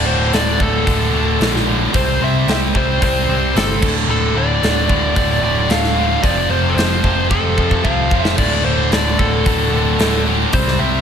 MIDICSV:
0, 0, Header, 1, 5, 480
1, 0, Start_track
1, 0, Key_signature, -1, "minor"
1, 0, Tempo, 536673
1, 1735, Time_signature, 4, 2, 24, 8
1, 9847, End_track
2, 0, Start_track
2, 0, Title_t, "Lead electric guitar"
2, 0, Program_c, 0, 29
2, 59, Note_on_c, 0, 72, 87
2, 302, Note_off_c, 0, 72, 0
2, 306, Note_on_c, 0, 74, 100
2, 548, Note_off_c, 0, 74, 0
2, 554, Note_on_c, 0, 69, 85
2, 1469, Note_off_c, 0, 69, 0
2, 1752, Note_on_c, 0, 72, 97
2, 1990, Note_off_c, 0, 72, 0
2, 2003, Note_on_c, 0, 76, 93
2, 2236, Note_off_c, 0, 76, 0
2, 2250, Note_on_c, 0, 76, 95
2, 2310, Note_off_c, 0, 76, 0
2, 2476, Note_on_c, 0, 72, 84
2, 2707, Note_off_c, 0, 72, 0
2, 2717, Note_on_c, 0, 72, 88
2, 3190, Note_on_c, 0, 69, 91
2, 3200, Note_off_c, 0, 72, 0
2, 3518, Note_off_c, 0, 69, 0
2, 3673, Note_on_c, 0, 69, 100
2, 3911, Note_off_c, 0, 69, 0
2, 3911, Note_on_c, 0, 74, 109
2, 4608, Note_off_c, 0, 74, 0
2, 4618, Note_on_c, 0, 74, 105
2, 4853, Note_off_c, 0, 74, 0
2, 4864, Note_on_c, 0, 74, 99
2, 5099, Note_on_c, 0, 77, 104
2, 5107, Note_off_c, 0, 74, 0
2, 5567, Note_on_c, 0, 74, 107
2, 5592, Note_off_c, 0, 77, 0
2, 5794, Note_off_c, 0, 74, 0
2, 5817, Note_on_c, 0, 72, 92
2, 5987, Note_on_c, 0, 69, 71
2, 6000, Note_off_c, 0, 72, 0
2, 6032, Note_on_c, 0, 72, 103
2, 6053, Note_off_c, 0, 69, 0
2, 6490, Note_off_c, 0, 72, 0
2, 6530, Note_on_c, 0, 69, 90
2, 7013, Note_on_c, 0, 77, 97
2, 7028, Note_off_c, 0, 69, 0
2, 7344, Note_off_c, 0, 77, 0
2, 7344, Note_on_c, 0, 76, 97
2, 7462, Note_off_c, 0, 76, 0
2, 7500, Note_on_c, 0, 74, 99
2, 7730, Note_off_c, 0, 74, 0
2, 7733, Note_on_c, 0, 72, 87
2, 7959, Note_off_c, 0, 72, 0
2, 7991, Note_on_c, 0, 74, 94
2, 8208, Note_off_c, 0, 74, 0
2, 8216, Note_on_c, 0, 69, 75
2, 9142, Note_off_c, 0, 69, 0
2, 9426, Note_on_c, 0, 72, 99
2, 9653, Note_on_c, 0, 76, 96
2, 9669, Note_off_c, 0, 72, 0
2, 9847, Note_off_c, 0, 76, 0
2, 9847, End_track
3, 0, Start_track
3, 0, Title_t, "Distorted electric guitar"
3, 0, Program_c, 1, 30
3, 50, Note_on_c, 1, 38, 83
3, 59, Note_on_c, 1, 45, 91
3, 60, Note_on_c, 1, 50, 82
3, 285, Note_off_c, 1, 38, 0
3, 288, Note_off_c, 1, 45, 0
3, 294, Note_off_c, 1, 50, 0
3, 296, Note_on_c, 1, 38, 92
3, 299, Note_on_c, 1, 45, 97
3, 305, Note_on_c, 1, 50, 113
3, 520, Note_off_c, 1, 38, 0
3, 529, Note_off_c, 1, 45, 0
3, 531, Note_on_c, 1, 38, 76
3, 534, Note_off_c, 1, 50, 0
3, 540, Note_on_c, 1, 45, 83
3, 545, Note_on_c, 1, 50, 98
3, 764, Note_off_c, 1, 38, 0
3, 773, Note_off_c, 1, 45, 0
3, 775, Note_off_c, 1, 50, 0
3, 775, Note_on_c, 1, 38, 103
3, 784, Note_on_c, 1, 45, 100
3, 785, Note_on_c, 1, 50, 111
3, 1007, Note_off_c, 1, 38, 0
3, 1010, Note_off_c, 1, 45, 0
3, 1017, Note_off_c, 1, 50, 0
3, 1018, Note_on_c, 1, 38, 83
3, 1021, Note_on_c, 1, 45, 87
3, 1027, Note_on_c, 1, 50, 81
3, 1235, Note_off_c, 1, 38, 0
3, 1243, Note_off_c, 1, 45, 0
3, 1246, Note_on_c, 1, 38, 102
3, 1248, Note_off_c, 1, 50, 0
3, 1253, Note_on_c, 1, 45, 100
3, 1259, Note_on_c, 1, 50, 106
3, 1483, Note_off_c, 1, 38, 0
3, 1489, Note_off_c, 1, 45, 0
3, 1493, Note_on_c, 1, 38, 86
3, 1494, Note_off_c, 1, 50, 0
3, 1499, Note_on_c, 1, 45, 92
3, 1505, Note_on_c, 1, 50, 100
3, 1719, Note_off_c, 1, 38, 0
3, 1723, Note_off_c, 1, 45, 0
3, 1723, Note_on_c, 1, 48, 92
3, 1726, Note_off_c, 1, 50, 0
3, 1730, Note_on_c, 1, 55, 112
3, 1735, Note_on_c, 1, 60, 106
3, 1967, Note_off_c, 1, 48, 0
3, 1970, Note_off_c, 1, 55, 0
3, 1974, Note_off_c, 1, 60, 0
3, 1978, Note_on_c, 1, 48, 76
3, 1981, Note_on_c, 1, 55, 84
3, 1985, Note_on_c, 1, 60, 97
3, 2206, Note_off_c, 1, 48, 0
3, 2207, Note_off_c, 1, 55, 0
3, 2217, Note_off_c, 1, 60, 0
3, 2217, Note_on_c, 1, 48, 95
3, 2218, Note_on_c, 1, 55, 103
3, 2228, Note_on_c, 1, 60, 111
3, 2441, Note_off_c, 1, 48, 0
3, 2445, Note_off_c, 1, 55, 0
3, 2449, Note_off_c, 1, 60, 0
3, 2452, Note_on_c, 1, 48, 73
3, 2456, Note_on_c, 1, 55, 87
3, 2460, Note_on_c, 1, 60, 94
3, 2685, Note_off_c, 1, 48, 0
3, 2690, Note_off_c, 1, 55, 0
3, 2694, Note_off_c, 1, 60, 0
3, 2695, Note_on_c, 1, 48, 102
3, 2701, Note_on_c, 1, 55, 95
3, 2704, Note_on_c, 1, 60, 107
3, 2922, Note_off_c, 1, 48, 0
3, 2933, Note_off_c, 1, 55, 0
3, 2933, Note_off_c, 1, 60, 0
3, 2933, Note_on_c, 1, 48, 80
3, 2944, Note_on_c, 1, 55, 88
3, 2944, Note_on_c, 1, 60, 90
3, 3162, Note_off_c, 1, 48, 0
3, 3164, Note_off_c, 1, 55, 0
3, 3169, Note_off_c, 1, 60, 0
3, 3173, Note_on_c, 1, 48, 102
3, 3174, Note_on_c, 1, 55, 116
3, 3180, Note_on_c, 1, 60, 103
3, 3400, Note_off_c, 1, 48, 0
3, 3400, Note_off_c, 1, 55, 0
3, 3403, Note_off_c, 1, 60, 0
3, 3407, Note_on_c, 1, 38, 100
3, 3412, Note_on_c, 1, 45, 95
3, 3413, Note_on_c, 1, 50, 109
3, 3636, Note_off_c, 1, 38, 0
3, 3643, Note_off_c, 1, 45, 0
3, 3647, Note_on_c, 1, 38, 103
3, 3653, Note_off_c, 1, 50, 0
3, 3653, Note_on_c, 1, 45, 111
3, 3664, Note_on_c, 1, 50, 115
3, 3879, Note_off_c, 1, 38, 0
3, 3886, Note_off_c, 1, 45, 0
3, 3888, Note_off_c, 1, 50, 0
3, 3889, Note_on_c, 1, 38, 81
3, 3896, Note_on_c, 1, 45, 89
3, 3898, Note_on_c, 1, 50, 93
3, 4115, Note_off_c, 1, 38, 0
3, 4122, Note_off_c, 1, 45, 0
3, 4126, Note_on_c, 1, 38, 94
3, 4128, Note_off_c, 1, 50, 0
3, 4133, Note_on_c, 1, 45, 105
3, 4139, Note_on_c, 1, 50, 122
3, 4360, Note_off_c, 1, 38, 0
3, 4363, Note_off_c, 1, 45, 0
3, 4369, Note_off_c, 1, 50, 0
3, 4371, Note_on_c, 1, 38, 79
3, 4374, Note_on_c, 1, 45, 92
3, 4380, Note_on_c, 1, 50, 93
3, 4590, Note_off_c, 1, 38, 0
3, 4593, Note_off_c, 1, 45, 0
3, 4601, Note_off_c, 1, 50, 0
3, 4601, Note_on_c, 1, 38, 103
3, 4604, Note_on_c, 1, 45, 101
3, 4612, Note_on_c, 1, 50, 112
3, 4823, Note_off_c, 1, 38, 0
3, 4832, Note_off_c, 1, 45, 0
3, 4834, Note_off_c, 1, 50, 0
3, 4834, Note_on_c, 1, 38, 89
3, 4843, Note_on_c, 1, 45, 85
3, 4845, Note_on_c, 1, 50, 90
3, 5066, Note_off_c, 1, 38, 0
3, 5074, Note_off_c, 1, 45, 0
3, 5076, Note_off_c, 1, 50, 0
3, 5077, Note_on_c, 1, 38, 94
3, 5085, Note_on_c, 1, 45, 107
3, 5086, Note_on_c, 1, 50, 111
3, 5312, Note_off_c, 1, 38, 0
3, 5317, Note_off_c, 1, 45, 0
3, 5320, Note_off_c, 1, 50, 0
3, 5323, Note_on_c, 1, 38, 85
3, 5328, Note_on_c, 1, 45, 94
3, 5331, Note_on_c, 1, 50, 94
3, 5555, Note_off_c, 1, 38, 0
3, 5558, Note_off_c, 1, 45, 0
3, 5559, Note_off_c, 1, 50, 0
3, 5563, Note_on_c, 1, 41, 93
3, 5569, Note_on_c, 1, 48, 108
3, 5575, Note_on_c, 1, 53, 118
3, 5793, Note_off_c, 1, 41, 0
3, 5803, Note_off_c, 1, 48, 0
3, 5804, Note_on_c, 1, 41, 83
3, 5814, Note_on_c, 1, 48, 84
3, 5816, Note_off_c, 1, 53, 0
3, 5820, Note_on_c, 1, 53, 91
3, 6043, Note_off_c, 1, 41, 0
3, 6047, Note_off_c, 1, 48, 0
3, 6054, Note_on_c, 1, 41, 98
3, 6057, Note_off_c, 1, 53, 0
3, 6057, Note_on_c, 1, 48, 101
3, 6061, Note_on_c, 1, 53, 114
3, 6279, Note_off_c, 1, 41, 0
3, 6288, Note_off_c, 1, 48, 0
3, 6290, Note_on_c, 1, 41, 77
3, 6298, Note_off_c, 1, 53, 0
3, 6299, Note_on_c, 1, 48, 85
3, 6302, Note_on_c, 1, 53, 94
3, 6524, Note_off_c, 1, 41, 0
3, 6528, Note_off_c, 1, 48, 0
3, 6532, Note_off_c, 1, 53, 0
3, 6535, Note_on_c, 1, 41, 105
3, 6539, Note_on_c, 1, 48, 112
3, 6543, Note_on_c, 1, 53, 110
3, 6774, Note_off_c, 1, 41, 0
3, 6781, Note_off_c, 1, 48, 0
3, 6783, Note_off_c, 1, 53, 0
3, 6785, Note_on_c, 1, 41, 84
3, 6792, Note_on_c, 1, 48, 94
3, 6794, Note_on_c, 1, 53, 93
3, 7007, Note_off_c, 1, 41, 0
3, 7013, Note_off_c, 1, 48, 0
3, 7017, Note_on_c, 1, 41, 93
3, 7019, Note_off_c, 1, 53, 0
3, 7024, Note_on_c, 1, 48, 100
3, 7029, Note_on_c, 1, 53, 105
3, 7244, Note_off_c, 1, 41, 0
3, 7254, Note_on_c, 1, 41, 85
3, 7255, Note_off_c, 1, 48, 0
3, 7260, Note_off_c, 1, 53, 0
3, 7265, Note_on_c, 1, 48, 92
3, 7271, Note_on_c, 1, 53, 97
3, 7482, Note_off_c, 1, 41, 0
3, 7487, Note_off_c, 1, 48, 0
3, 7490, Note_off_c, 1, 53, 0
3, 7494, Note_on_c, 1, 38, 95
3, 7500, Note_on_c, 1, 45, 105
3, 7504, Note_on_c, 1, 50, 107
3, 7717, Note_off_c, 1, 38, 0
3, 7721, Note_off_c, 1, 45, 0
3, 7728, Note_on_c, 1, 38, 83
3, 7729, Note_off_c, 1, 50, 0
3, 7732, Note_on_c, 1, 45, 85
3, 7739, Note_on_c, 1, 50, 95
3, 7963, Note_off_c, 1, 38, 0
3, 7970, Note_off_c, 1, 45, 0
3, 7973, Note_on_c, 1, 38, 97
3, 7977, Note_off_c, 1, 50, 0
3, 7981, Note_on_c, 1, 45, 110
3, 7988, Note_on_c, 1, 50, 115
3, 8211, Note_off_c, 1, 38, 0
3, 8218, Note_off_c, 1, 45, 0
3, 8222, Note_off_c, 1, 50, 0
3, 8222, Note_on_c, 1, 38, 78
3, 8229, Note_on_c, 1, 45, 91
3, 8233, Note_on_c, 1, 50, 93
3, 8446, Note_off_c, 1, 38, 0
3, 8452, Note_off_c, 1, 45, 0
3, 8456, Note_on_c, 1, 38, 103
3, 8458, Note_off_c, 1, 50, 0
3, 8463, Note_on_c, 1, 45, 105
3, 8469, Note_on_c, 1, 50, 109
3, 8684, Note_off_c, 1, 38, 0
3, 8692, Note_off_c, 1, 45, 0
3, 8694, Note_on_c, 1, 38, 87
3, 8695, Note_off_c, 1, 50, 0
3, 8703, Note_on_c, 1, 45, 89
3, 8705, Note_on_c, 1, 50, 89
3, 8930, Note_off_c, 1, 38, 0
3, 8938, Note_off_c, 1, 45, 0
3, 8941, Note_on_c, 1, 38, 105
3, 8946, Note_off_c, 1, 50, 0
3, 8949, Note_on_c, 1, 45, 112
3, 8957, Note_on_c, 1, 50, 110
3, 9171, Note_off_c, 1, 38, 0
3, 9182, Note_off_c, 1, 45, 0
3, 9182, Note_on_c, 1, 38, 89
3, 9185, Note_off_c, 1, 50, 0
3, 9193, Note_on_c, 1, 45, 100
3, 9196, Note_on_c, 1, 50, 111
3, 9406, Note_off_c, 1, 38, 0
3, 9411, Note_off_c, 1, 45, 0
3, 9412, Note_off_c, 1, 50, 0
3, 9427, Note_on_c, 1, 48, 90
3, 9433, Note_on_c, 1, 55, 103
3, 9439, Note_on_c, 1, 60, 106
3, 9652, Note_off_c, 1, 48, 0
3, 9659, Note_off_c, 1, 55, 0
3, 9662, Note_off_c, 1, 60, 0
3, 9663, Note_on_c, 1, 48, 81
3, 9669, Note_on_c, 1, 55, 89
3, 9673, Note_on_c, 1, 60, 89
3, 9847, Note_off_c, 1, 48, 0
3, 9847, Note_off_c, 1, 55, 0
3, 9847, Note_off_c, 1, 60, 0
3, 9847, End_track
4, 0, Start_track
4, 0, Title_t, "Picked electric bass"
4, 0, Program_c, 2, 34
4, 56, Note_on_c, 2, 26, 89
4, 258, Note_off_c, 2, 26, 0
4, 296, Note_on_c, 2, 26, 83
4, 499, Note_off_c, 2, 26, 0
4, 534, Note_on_c, 2, 26, 90
4, 737, Note_off_c, 2, 26, 0
4, 776, Note_on_c, 2, 26, 90
4, 978, Note_off_c, 2, 26, 0
4, 1007, Note_on_c, 2, 26, 89
4, 1213, Note_off_c, 2, 26, 0
4, 1250, Note_on_c, 2, 34, 94
4, 1658, Note_off_c, 2, 34, 0
4, 1735, Note_on_c, 2, 36, 96
4, 1938, Note_off_c, 2, 36, 0
4, 1975, Note_on_c, 2, 36, 85
4, 2178, Note_off_c, 2, 36, 0
4, 2211, Note_on_c, 2, 36, 85
4, 2416, Note_off_c, 2, 36, 0
4, 2457, Note_on_c, 2, 36, 88
4, 2659, Note_off_c, 2, 36, 0
4, 2698, Note_on_c, 2, 36, 90
4, 2900, Note_off_c, 2, 36, 0
4, 2941, Note_on_c, 2, 36, 94
4, 3141, Note_off_c, 2, 36, 0
4, 3182, Note_on_c, 2, 31, 94
4, 3382, Note_off_c, 2, 31, 0
4, 3421, Note_on_c, 2, 26, 79
4, 3621, Note_off_c, 2, 26, 0
4, 3654, Note_on_c, 2, 26, 100
4, 3857, Note_off_c, 2, 26, 0
4, 3888, Note_on_c, 2, 26, 98
4, 4094, Note_off_c, 2, 26, 0
4, 4135, Note_on_c, 2, 26, 99
4, 4338, Note_off_c, 2, 26, 0
4, 4372, Note_on_c, 2, 26, 92
4, 4576, Note_off_c, 2, 26, 0
4, 4617, Note_on_c, 2, 26, 98
4, 4819, Note_off_c, 2, 26, 0
4, 4840, Note_on_c, 2, 26, 96
4, 5050, Note_off_c, 2, 26, 0
4, 5085, Note_on_c, 2, 26, 95
4, 5495, Note_off_c, 2, 26, 0
4, 5575, Note_on_c, 2, 29, 98
4, 5778, Note_off_c, 2, 29, 0
4, 5807, Note_on_c, 2, 29, 89
4, 6014, Note_off_c, 2, 29, 0
4, 6047, Note_on_c, 2, 29, 86
4, 6254, Note_off_c, 2, 29, 0
4, 6295, Note_on_c, 2, 29, 89
4, 6499, Note_off_c, 2, 29, 0
4, 6534, Note_on_c, 2, 29, 95
4, 6738, Note_off_c, 2, 29, 0
4, 6775, Note_on_c, 2, 41, 94
4, 6978, Note_off_c, 2, 41, 0
4, 7014, Note_on_c, 2, 36, 88
4, 7218, Note_off_c, 2, 36, 0
4, 7253, Note_on_c, 2, 29, 81
4, 7458, Note_off_c, 2, 29, 0
4, 7491, Note_on_c, 2, 26, 100
4, 7696, Note_off_c, 2, 26, 0
4, 7736, Note_on_c, 2, 26, 90
4, 7940, Note_off_c, 2, 26, 0
4, 7975, Note_on_c, 2, 26, 90
4, 8179, Note_off_c, 2, 26, 0
4, 8220, Note_on_c, 2, 26, 93
4, 8422, Note_off_c, 2, 26, 0
4, 8462, Note_on_c, 2, 26, 88
4, 8663, Note_off_c, 2, 26, 0
4, 8693, Note_on_c, 2, 26, 97
4, 8898, Note_off_c, 2, 26, 0
4, 8937, Note_on_c, 2, 26, 97
4, 9343, Note_off_c, 2, 26, 0
4, 9418, Note_on_c, 2, 36, 105
4, 9621, Note_off_c, 2, 36, 0
4, 9656, Note_on_c, 2, 36, 88
4, 9847, Note_off_c, 2, 36, 0
4, 9847, End_track
5, 0, Start_track
5, 0, Title_t, "Drums"
5, 297, Note_on_c, 9, 46, 60
5, 307, Note_on_c, 9, 38, 106
5, 386, Note_off_c, 9, 46, 0
5, 396, Note_off_c, 9, 38, 0
5, 538, Note_on_c, 9, 36, 88
5, 627, Note_off_c, 9, 36, 0
5, 779, Note_on_c, 9, 36, 117
5, 783, Note_on_c, 9, 46, 64
5, 868, Note_off_c, 9, 36, 0
5, 872, Note_off_c, 9, 46, 0
5, 1261, Note_on_c, 9, 46, 62
5, 1270, Note_on_c, 9, 38, 105
5, 1350, Note_off_c, 9, 46, 0
5, 1360, Note_off_c, 9, 38, 0
5, 1396, Note_on_c, 9, 38, 36
5, 1485, Note_off_c, 9, 38, 0
5, 1734, Note_on_c, 9, 46, 65
5, 1738, Note_on_c, 9, 36, 117
5, 1824, Note_off_c, 9, 46, 0
5, 1828, Note_off_c, 9, 36, 0
5, 2221, Note_on_c, 9, 46, 59
5, 2231, Note_on_c, 9, 38, 116
5, 2310, Note_off_c, 9, 46, 0
5, 2320, Note_off_c, 9, 38, 0
5, 2460, Note_on_c, 9, 36, 85
5, 2549, Note_off_c, 9, 36, 0
5, 2701, Note_on_c, 9, 46, 68
5, 2702, Note_on_c, 9, 36, 114
5, 2790, Note_off_c, 9, 46, 0
5, 2791, Note_off_c, 9, 36, 0
5, 3188, Note_on_c, 9, 46, 62
5, 3198, Note_on_c, 9, 38, 109
5, 3277, Note_off_c, 9, 46, 0
5, 3287, Note_off_c, 9, 38, 0
5, 3421, Note_on_c, 9, 36, 108
5, 3422, Note_on_c, 9, 49, 102
5, 3510, Note_off_c, 9, 36, 0
5, 3512, Note_off_c, 9, 49, 0
5, 4143, Note_on_c, 9, 46, 57
5, 4153, Note_on_c, 9, 38, 107
5, 4233, Note_off_c, 9, 46, 0
5, 4242, Note_off_c, 9, 38, 0
5, 4378, Note_on_c, 9, 36, 84
5, 4467, Note_off_c, 9, 36, 0
5, 4619, Note_on_c, 9, 36, 112
5, 4621, Note_on_c, 9, 46, 62
5, 4708, Note_off_c, 9, 36, 0
5, 4711, Note_off_c, 9, 46, 0
5, 5096, Note_on_c, 9, 46, 59
5, 5106, Note_on_c, 9, 38, 110
5, 5186, Note_off_c, 9, 46, 0
5, 5196, Note_off_c, 9, 38, 0
5, 5226, Note_on_c, 9, 38, 33
5, 5316, Note_off_c, 9, 38, 0
5, 5577, Note_on_c, 9, 36, 119
5, 5577, Note_on_c, 9, 46, 61
5, 5666, Note_off_c, 9, 36, 0
5, 5666, Note_off_c, 9, 46, 0
5, 6063, Note_on_c, 9, 46, 60
5, 6073, Note_on_c, 9, 38, 105
5, 6152, Note_off_c, 9, 46, 0
5, 6162, Note_off_c, 9, 38, 0
5, 6296, Note_on_c, 9, 36, 86
5, 6386, Note_off_c, 9, 36, 0
5, 6537, Note_on_c, 9, 36, 118
5, 6626, Note_off_c, 9, 36, 0
5, 6778, Note_on_c, 9, 36, 84
5, 6867, Note_off_c, 9, 36, 0
5, 6897, Note_on_c, 9, 36, 74
5, 6987, Note_off_c, 9, 36, 0
5, 7018, Note_on_c, 9, 36, 86
5, 7107, Note_off_c, 9, 36, 0
5, 7257, Note_on_c, 9, 36, 102
5, 7346, Note_off_c, 9, 36, 0
5, 7380, Note_on_c, 9, 38, 91
5, 7470, Note_off_c, 9, 38, 0
5, 7494, Note_on_c, 9, 57, 103
5, 7496, Note_on_c, 9, 36, 111
5, 7583, Note_off_c, 9, 57, 0
5, 7586, Note_off_c, 9, 36, 0
5, 7976, Note_on_c, 9, 46, 59
5, 7986, Note_on_c, 9, 38, 114
5, 8066, Note_off_c, 9, 46, 0
5, 8076, Note_off_c, 9, 38, 0
5, 8222, Note_on_c, 9, 36, 89
5, 8311, Note_off_c, 9, 36, 0
5, 8460, Note_on_c, 9, 46, 61
5, 8462, Note_on_c, 9, 36, 120
5, 8550, Note_off_c, 9, 46, 0
5, 8552, Note_off_c, 9, 36, 0
5, 8939, Note_on_c, 9, 46, 60
5, 8948, Note_on_c, 9, 38, 106
5, 9028, Note_off_c, 9, 46, 0
5, 9038, Note_off_c, 9, 38, 0
5, 9416, Note_on_c, 9, 46, 61
5, 9421, Note_on_c, 9, 36, 110
5, 9505, Note_off_c, 9, 46, 0
5, 9511, Note_off_c, 9, 36, 0
5, 9549, Note_on_c, 9, 38, 35
5, 9638, Note_off_c, 9, 38, 0
5, 9847, End_track
0, 0, End_of_file